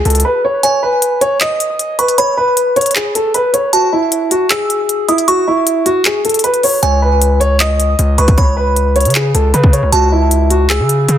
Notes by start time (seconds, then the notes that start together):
0.05 C#2 A4, closed hi-hat
0.10 closed hi-hat
0.15 closed hi-hat
0.20 closed hi-hat
0.25 B4
0.45 C#5
0.63 C#5 G#5, closed hi-hat
0.83 B4
1.02 closed hi-hat
1.21 C#5, closed hi-hat
1.41 D#5 D#6, clap, closed hi-hat
1.60 closed hi-hat
1.79 closed hi-hat
1.99 B4 C#6, closed hi-hat
2.08 closed hi-hat
2.18 C#5 B5, closed hi-hat
2.37 B4
2.57 closed hi-hat
2.76 C#5, closed hi-hat
2.81 closed hi-hat
2.86 closed hi-hat
2.91 closed hi-hat
2.96 G#4, clap, closed hi-hat
3.15 A4, closed hi-hat
3.34 B4, closed hi-hat
3.53 C#5, closed hi-hat
3.73 F#4 A5, closed hi-hat
3.93 E4
4.12 closed hi-hat
4.31 F#4, closed hi-hat
4.50 G#4 E6, clap, closed hi-hat
4.70 closed hi-hat
4.89 closed hi-hat
5.08 E4 D#6, closed hi-hat
5.18 closed hi-hat
5.28 F#4 C#6, closed hi-hat
5.48 E4
5.67 closed hi-hat
5.86 F#4, closed hi-hat
6.05 G#4, clap, closed hi-hat
6.25 A4, closed hi-hat
6.29 closed hi-hat
6.34 closed hi-hat
6.39 closed hi-hat
6.44 B4, closed hi-hat
6.54 closed hi-hat
6.63 C#5, open hi-hat
6.83 C#2 C#5 G#5, closed hi-hat
7.02 B4
7.22 closed hi-hat
7.40 C#5, closed hi-hat
7.60 D#6, clap, closed hi-hat
7.80 closed hi-hat
7.99 C#2, closed hi-hat
8.18 C#2 B4 C#6, closed hi-hat
8.28 kick, closed hi-hat
8.38 C#5 B5, kick, closed hi-hat
8.57 B4
8.76 closed hi-hat
8.96 C#5, closed hi-hat
9.01 closed hi-hat
9.05 C#3, closed hi-hat
9.10 closed hi-hat
9.15 G#4, clap, closed hi-hat
9.34 C#2 A4, closed hi-hat
9.54 C#3 B4, closed hi-hat
9.64 kick
9.73 C#5, closed hi-hat
9.83 C#2
9.92 C#2 F#4 A5, closed hi-hat
10.12 E4
10.31 closed hi-hat
10.50 F#4, closed hi-hat
10.70 G#4 E6, clap, closed hi-hat
10.80 C#3
10.89 closed hi-hat
11.09 C#3, closed hi-hat